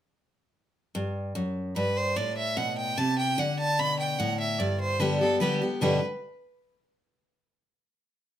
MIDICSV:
0, 0, Header, 1, 3, 480
1, 0, Start_track
1, 0, Key_signature, 1, "major"
1, 0, Tempo, 405405
1, 1120, Time_signature, 3, 2, 24, 8
1, 9935, End_track
2, 0, Start_track
2, 0, Title_t, "Fiddle"
2, 0, Program_c, 0, 110
2, 2085, Note_on_c, 0, 71, 86
2, 2332, Note_on_c, 0, 72, 97
2, 2349, Note_off_c, 0, 71, 0
2, 2559, Note_on_c, 0, 74, 86
2, 2577, Note_off_c, 0, 72, 0
2, 2799, Note_off_c, 0, 74, 0
2, 2806, Note_on_c, 0, 76, 86
2, 3038, Note_on_c, 0, 78, 89
2, 3056, Note_off_c, 0, 76, 0
2, 3283, Note_off_c, 0, 78, 0
2, 3290, Note_on_c, 0, 79, 90
2, 3523, Note_on_c, 0, 81, 101
2, 3541, Note_off_c, 0, 79, 0
2, 3760, Note_off_c, 0, 81, 0
2, 3767, Note_on_c, 0, 79, 101
2, 4010, Note_on_c, 0, 78, 86
2, 4028, Note_off_c, 0, 79, 0
2, 4245, Note_off_c, 0, 78, 0
2, 4252, Note_on_c, 0, 81, 99
2, 4493, Note_on_c, 0, 83, 109
2, 4511, Note_off_c, 0, 81, 0
2, 4721, Note_off_c, 0, 83, 0
2, 4728, Note_on_c, 0, 79, 96
2, 4958, Note_on_c, 0, 78, 93
2, 4976, Note_off_c, 0, 79, 0
2, 5203, Note_off_c, 0, 78, 0
2, 5210, Note_on_c, 0, 76, 90
2, 5431, Note_on_c, 0, 74, 82
2, 5449, Note_off_c, 0, 76, 0
2, 5682, Note_off_c, 0, 74, 0
2, 5689, Note_on_c, 0, 72, 96
2, 5915, Note_on_c, 0, 71, 82
2, 5932, Note_off_c, 0, 72, 0
2, 6157, Note_off_c, 0, 71, 0
2, 6165, Note_on_c, 0, 69, 78
2, 6385, Note_off_c, 0, 69, 0
2, 6398, Note_on_c, 0, 71, 82
2, 6550, Note_off_c, 0, 71, 0
2, 6891, Note_on_c, 0, 71, 85
2, 7120, Note_off_c, 0, 71, 0
2, 9935, End_track
3, 0, Start_track
3, 0, Title_t, "Steel-string acoustic guitar"
3, 0, Program_c, 1, 25
3, 1123, Note_on_c, 1, 43, 91
3, 1595, Note_off_c, 1, 43, 0
3, 1600, Note_on_c, 1, 42, 82
3, 2056, Note_off_c, 1, 42, 0
3, 2085, Note_on_c, 1, 43, 87
3, 2539, Note_off_c, 1, 43, 0
3, 2561, Note_on_c, 1, 45, 91
3, 3041, Note_on_c, 1, 47, 85
3, 3475, Note_off_c, 1, 45, 0
3, 3498, Note_off_c, 1, 47, 0
3, 3524, Note_on_c, 1, 48, 94
3, 3980, Note_off_c, 1, 48, 0
3, 4001, Note_on_c, 1, 50, 98
3, 4487, Note_on_c, 1, 47, 81
3, 4917, Note_off_c, 1, 50, 0
3, 4943, Note_off_c, 1, 47, 0
3, 4968, Note_on_c, 1, 45, 83
3, 5424, Note_off_c, 1, 45, 0
3, 5443, Note_on_c, 1, 43, 90
3, 5915, Note_on_c, 1, 50, 89
3, 5924, Note_on_c, 1, 55, 87
3, 5928, Note_on_c, 1, 59, 88
3, 5937, Note_on_c, 1, 67, 93
3, 6154, Note_off_c, 1, 67, 0
3, 6160, Note_off_c, 1, 50, 0
3, 6164, Note_off_c, 1, 55, 0
3, 6166, Note_off_c, 1, 59, 0
3, 6168, Note_on_c, 1, 67, 58
3, 6186, Note_on_c, 1, 59, 49
3, 6359, Note_off_c, 1, 43, 0
3, 6394, Note_off_c, 1, 67, 0
3, 6395, Note_off_c, 1, 59, 0
3, 6395, Note_on_c, 1, 50, 90
3, 6405, Note_on_c, 1, 55, 87
3, 6410, Note_on_c, 1, 59, 96
3, 6418, Note_on_c, 1, 67, 102
3, 6634, Note_off_c, 1, 67, 0
3, 6640, Note_off_c, 1, 50, 0
3, 6645, Note_off_c, 1, 55, 0
3, 6647, Note_off_c, 1, 59, 0
3, 6648, Note_on_c, 1, 67, 60
3, 6665, Note_on_c, 1, 59, 48
3, 6874, Note_off_c, 1, 67, 0
3, 6881, Note_on_c, 1, 43, 85
3, 6883, Note_off_c, 1, 59, 0
3, 6886, Note_on_c, 1, 47, 92
3, 6888, Note_on_c, 1, 50, 105
3, 6891, Note_on_c, 1, 55, 86
3, 6896, Note_on_c, 1, 59, 103
3, 6898, Note_on_c, 1, 67, 87
3, 7083, Note_off_c, 1, 43, 0
3, 7085, Note_off_c, 1, 47, 0
3, 7086, Note_off_c, 1, 50, 0
3, 7088, Note_off_c, 1, 55, 0
3, 7091, Note_off_c, 1, 59, 0
3, 7092, Note_off_c, 1, 67, 0
3, 9935, End_track
0, 0, End_of_file